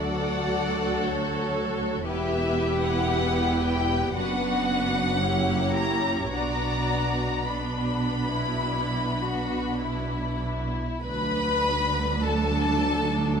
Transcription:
0.00 2.04 D2 soft
0.00 2.04 F#3 soft
0.00 2.04 F#4 medium
0.00 2.03 A4 medium
0.00 1.02 D5 soft
0.00 1.57 F#5 medium
1.03 2.07 C#5 soft
2.06 4.12 E1 soft
2.06 4.12 E2 soft
2.06 4.12 B3 medium
2.06 4.12 E4 medium
2.06 4.12 G4 medium
2.06 4.11 B4 soft
2.06 2.80 E5 medium
2.83 3.62 F#5 medium
3.62 4.16 G5 medium
4.15 6.33 F#1 soft
4.15 6.33 F#2 soft
4.15 5.19 B3 soft
4.15 5.19 D4 soft
4.15 5.20 F#4 soft
4.15 5.20 B4 soft
4.15 5.73 F#5 medium
5.20 6.32 A#3 soft
5.20 6.33 E4 soft
5.20 6.33 G4 soft
5.20 6.31 C#5 soft
5.77 6.32 A#5 medium
6.32 10.77 B1 soft
6.32 10.77 B2 soft
6.32 7.45 B3 soft
6.32 7.46 D4 soft
6.32 7.46 F#4 soft
6.32 7.48 D5 soft
6.32 7.46 A#5 medium
7.47 10.77 B3 soft
7.47 8.30 D4 soft
7.47 10.77 D4 soft
7.47 10.41 B5 soft
8.33 9.21 E4 soft
9.21 9.81 F#4 soft
9.80 11.00 E4 soft
11.02 13.40 D2 soft
11.02 13.40 F#3 medium
11.02 13.40 D4 medium
11.02 12.21 B4 medium
11.02 12.20 B5 medium
12.23 13.40 A4 medium
12.23 13.40 A5 medium

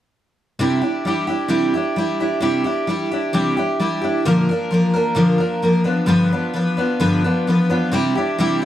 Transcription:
0.59 0.82 C3 medium
0.59 0.82 G3 medium
0.59 0.83 D4 medium
0.59 0.81 E4 medium
0.59 0.80 G4 medium
0.81 1.05 D4 soft
0.81 1.05 E4 soft
0.81 1.05 G4 soft
1.05 1.28 G3 medium
1.05 1.28 D4 medium
1.05 1.27 E4 medium
1.05 1.26 G4 medium
1.27 1.48 D4 soft
1.27 1.49 E4 soft
1.27 1.49 G4 soft
1.48 1.73 C3 medium
1.48 1.73 G3 medium
1.48 1.73 D4 medium
1.48 1.74 E4 medium
1.48 1.73 G4 medium
1.74 1.97 D4 soft
1.74 1.97 E4 soft
1.74 1.97 G4 soft
1.96 2.19 G3 medium
1.96 2.20 D4 medium
1.96 2.20 E4 medium
1.96 2.19 G4 medium
2.20 2.41 D4 soft
2.20 2.41 E4 soft
2.20 2.42 G4 soft
2.40 2.64 C3 medium
2.40 2.65 G3 medium
2.40 2.65 D4 medium
2.40 2.64 E4 medium
2.40 2.63 G4 medium
2.64 2.88 D4 soft
2.64 2.88 E4 soft
2.64 2.88 G4 soft
2.87 3.11 G3 medium
2.87 3.12 D4 medium
2.87 3.12 E4 medium
2.87 3.10 G4 medium
3.11 3.33 D4 soft
3.11 3.33 E4 soft
3.11 3.33 G4 soft
3.33 3.57 C3 medium
3.33 3.57 G3 medium
3.33 3.57 D4 medium
3.33 3.57 E4 medium
3.33 3.56 G4 medium
3.57 3.79 D4 soft
3.57 3.80 E4 soft
3.57 3.80 G4 soft
3.79 4.03 G3 medium
3.79 4.03 D4 medium
3.79 4.02 E4 medium
3.79 4.00 G4 medium
4.01 4.25 D4 soft
4.01 4.26 E4 soft
4.01 4.25 G4 soft
4.25 4.49 A#2 medium
4.25 4.48 D3 medium
4.25 4.49 F3 medium
4.25 4.49 A#3 medium
4.25 4.49 D4 medium
4.25 4.48 A#4 medium
4.49 4.69 F3 soft
4.49 4.71 A#3 soft
4.49 4.71 D4 soft
4.49 4.72 A#4 medium
4.71 4.94 F3 medium
4.71 4.95 A#3 medium
4.71 4.93 D4 medium
4.71 4.92 A#4 medium
4.94 5.16 F3 soft
4.94 5.15 A#3 soft
4.94 5.15 D4 soft
4.94 5.15 A#4 soft
5.15 5.39 A#2 medium
5.15 5.39 D3 medium
5.15 5.40 F3 medium
5.15 5.39 A#3 medium
5.15 5.39 D4 medium
5.15 5.37 A#4 medium
5.38 5.61 F3 soft
5.38 5.62 A#3 soft
5.38 5.62 D4 soft
5.38 5.62 A#4 soft
5.62 5.86 F3 medium
5.62 5.85 A#3 medium
5.62 5.84 D4 medium
5.62 5.84 A#4 medium
5.84 6.06 F3 soft
5.84 6.07 B3 soft
5.84 6.07 D4 soft
5.84 6.07 B4 medium
6.06 6.30 G2 medium
6.06 6.31 D3 medium
6.06 6.31 F3 medium
6.06 6.31 B3 medium
6.06 6.32 D4 medium
6.06 6.31 B4 medium
6.32 6.52 F3 soft
6.32 6.53 B3 soft
6.32 6.55 D4 soft
6.32 6.55 B4 soft
6.54 6.77 F3 medium
6.54 6.77 B3 medium
6.54 6.77 D4 medium
6.54 6.76 B4 medium
6.77 6.99 F3 soft
6.77 6.99 B3 soft
6.77 7.00 D4 soft
6.77 7.00 B4 soft
7.00 7.23 G2 medium
7.00 7.23 D3 medium
7.00 7.23 F3 medium
7.00 7.23 B3 medium
7.00 7.23 D4 medium
7.00 7.23 B4 medium
7.24 7.46 F3 soft
7.24 7.47 B3 soft
7.24 7.47 D4 soft
7.24 7.47 B4 soft
7.47 7.70 F3 medium
7.47 7.69 B3 medium
7.47 7.69 D4 medium
7.47 7.68 B4 medium
7.70 7.92 F3 soft
7.70 7.92 B3 soft
7.70 7.91 D4 medium
7.70 7.92 B4 medium
7.92 8.15 C3 medium
7.92 8.15 G3 medium
7.92 8.15 D4 medium
7.92 8.16 E4 medium
7.92 8.14 G4 medium
8.15 8.39 D4 soft
8.15 8.39 E4 soft
8.15 8.38 G4 medium
8.39 8.61 C3 medium
8.39 8.61 G3 medium
8.39 8.62 D4 medium
8.39 8.62 E4 medium
8.39 8.60 G4 medium
8.62 8.65 G4 soft

